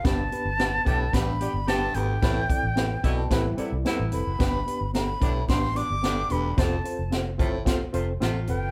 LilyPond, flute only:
\new Staff \with { instrumentName = "Flute" } { \time 4/4 \key g \mixolydian \tempo 4 = 110 a''2 b''4 a''8 g''8~ | g''2~ g''8 r4 b''8~ | b''4 b''4 c'''8 d'''4 b''8 | a''4 r2 r8 g''8 | }